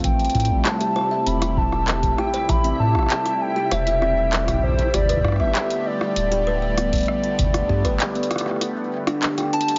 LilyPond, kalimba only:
\new Staff \with { instrumentName = "Kalimba" } { \time 4/4 \key a \minor \tempo 4 = 98 r4 r16 g'16 c''16 e''16 c'16 r4 r16 g'16 c''16 | e''16 c'16 r4 r16 g'16 c''16 e''16 c'16 r4 r16 | g'16 b'16 d''16 b16 r4 r16 g'16 b'16 d''16 b16 r8. | r8 g'16 b'16 d''16 b16 r4 r16 d'16 d'16 g''16 d'16 r16 | }